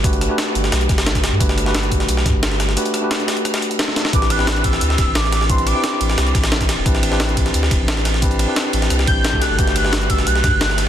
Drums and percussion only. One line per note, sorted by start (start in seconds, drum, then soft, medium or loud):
0.04 kick loud
0.04 closed hi-hat medium
0.04 closed hi-hat loud
0.13 closed hi-hat soft
0.21 cross-stick soft
0.21 closed hi-hat medium
0.38 snare loud
0.38 closed hi-hat loud
0.38 closed hi-hat medium
0.55 closed hi-hat medium
0.64 snare medium
0.64 closed hi-hat soft
0.72 cross-stick medium
0.72 snare loud
0.72 closed hi-hat loud
0.72 closed hi-hat medium
0.81 closed hi-hat soft
0.89 kick loud
0.89 snare soft
0.89 closed hi-hat medium
0.98 snare loud
0.98 closed hi-hat medium
1.06 snare loud
1.06 closed hi-hat medium
1.15 kick medium
1.15 snare soft
1.15 closed hi-hat medium
1.23 snare loud
1.23 closed hi-hat medium
1.40 kick loud
1.40 closed hi-hat loud
1.40 closed hi-hat medium
1.49 snare medium
1.49 closed hi-hat soft
1.58 cross-stick soft
1.58 closed hi-hat medium
1.66 snare soft
1.75 snare loud
1.75 closed hi-hat medium
1.75 closed hi-hat loud
1.83 closed hi-hat soft
1.92 kick medium
1.92 closed hi-hat medium
2.00 snare medium
2.00 closed hi-hat soft
2.08 closed hi-hat medium
2.08 closed hi-hat loud
2.17 snare medium
2.26 kick loud
2.26 snare soft
2.26 closed hi-hat medium
2.43 snare loud
2.43 closed hi-hat loud
2.43 closed hi-hat medium
2.52 snare soft
2.60 cross-stick soft
2.60 snare medium
2.60 closed hi-hat medium
2.69 snare soft
2.77 closed hi-hat loud
2.77 closed hi-hat medium
2.85 closed hi-hat soft
2.94 cross-stick soft
2.94 closed hi-hat medium
3.11 snare loud
3.11 closed hi-hat loud
3.11 closed hi-hat medium
3.20 closed hi-hat soft
3.28 snare loud
3.28 closed hi-hat medium
3.37 closed hi-hat soft
3.45 cross-stick medium
3.45 closed hi-hat loud
3.45 closed hi-hat medium
3.54 snare loud
3.54 closed hi-hat medium
3.54 closed hi-hat soft
3.62 closed hi-hat medium
3.71 closed hi-hat medium
3.79 snare loud
3.79 closed hi-hat medium
3.79 closed hi-hat loud
3.88 snare medium
3.96 snare medium
3.96 closed hi-hat medium
4.05 snare medium
4.13 kick loud
4.13 closed hi-hat loud
4.13 closed hi-hat medium
4.22 snare medium
4.22 closed hi-hat soft
4.30 cross-stick soft
4.30 closed hi-hat medium
4.30 ride bell medium
4.39 snare soft
4.47 snare loud
4.47 closed hi-hat loud
4.47 closed hi-hat medium
4.56 closed hi-hat soft
4.64 kick medium
4.64 closed hi-hat medium
4.64 ride bell medium
4.73 snare soft
4.73 closed hi-hat soft
4.81 closed hi-hat loud
4.81 closed hi-hat medium
4.90 snare medium
4.98 kick loud
4.98 snare soft
4.98 closed hi-hat medium
4.98 ride bell medium
5.15 snare loud
5.15 closed hi-hat loud
5.15 closed hi-hat medium
5.24 snare medium
5.32 cross-stick medium
5.32 snare medium
5.32 closed hi-hat medium
5.32 ride bell medium
5.41 snare soft
5.50 kick loud
5.50 closed hi-hat medium
5.58 closed hi-hat soft
5.67 cross-stick soft
5.67 closed hi-hat medium
5.67 ride bell medium
5.84 snare loud
5.84 closed hi-hat loud
6.01 closed hi-hat medium
6.01 ride bell medium
6.10 snare medium
6.10 closed hi-hat soft
6.18 cross-stick medium
6.18 snare loud
6.18 closed hi-hat loud
6.18 closed hi-hat medium
6.27 closed hi-hat soft
6.35 kick loud
6.35 snare soft
6.35 closed hi-hat medium
6.35 ride bell medium
6.44 snare loud
6.44 closed hi-hat medium
6.52 snare loud
6.52 closed hi-hat medium
6.60 kick medium
6.60 snare medium
6.60 closed hi-hat medium
6.69 snare loud
6.69 closed hi-hat medium
6.69 ride bell medium
6.86 kick loud
6.86 closed hi-hat loud
6.86 closed hi-hat medium
6.95 snare medium
6.95 closed hi-hat soft
7.03 cross-stick soft
7.03 closed hi-hat medium
7.03 ride bell medium
7.12 snare soft
7.20 snare loud
7.20 closed hi-hat medium
7.20 closed hi-hat loud
7.29 closed hi-hat soft
7.37 kick medium
7.37 closed hi-hat medium
7.37 ride bell medium
7.46 snare soft
7.46 closed hi-hat soft
7.54 closed hi-hat loud
7.54 closed hi-hat medium
7.63 snare medium
7.71 kick loud
7.71 snare soft
7.71 closed hi-hat medium
7.71 ride bell medium
7.88 snare loud
7.88 closed hi-hat medium
7.97 snare soft
8.05 cross-stick soft
8.05 snare medium
8.05 closed hi-hat medium
8.05 ride bell medium
8.14 snare soft
8.22 kick loud
8.22 closed hi-hat medium
8.31 closed hi-hat soft
8.39 cross-stick soft
8.39 closed hi-hat medium
8.39 ride bell medium
8.56 snare loud
8.56 closed hi-hat loud
8.56 closed hi-hat medium
8.73 closed hi-hat medium
8.73 ride bell medium
8.82 snare medium
8.82 closed hi-hat soft
8.90 cross-stick medium
8.90 closed hi-hat medium
8.99 snare soft
8.99 closed hi-hat soft
9.07 kick loud
9.07 closed hi-hat medium
9.07 ride bell medium
9.25 snare loud
9.25 closed hi-hat medium
9.33 kick medium
9.42 snare medium
9.42 closed hi-hat medium
9.42 ride bell medium
9.59 kick loud
9.59 closed hi-hat medium
9.67 snare medium
9.67 closed hi-hat soft
9.76 cross-stick soft
9.76 closed hi-hat medium
9.76 ride bell medium
9.85 snare soft
9.93 snare loud
9.93 closed hi-hat medium
10.01 closed hi-hat soft
10.10 kick medium
10.10 closed hi-hat medium
10.10 ride bell medium
10.18 snare soft
10.18 closed hi-hat soft
10.27 closed hi-hat medium
10.35 snare medium
10.44 kick loud
10.44 snare soft
10.44 closed hi-hat medium
10.44 ride bell medium
10.61 snare loud
10.61 closed hi-hat medium
10.70 snare soft
10.78 cross-stick soft
10.78 snare medium
10.78 closed hi-hat medium
10.78 ride bell medium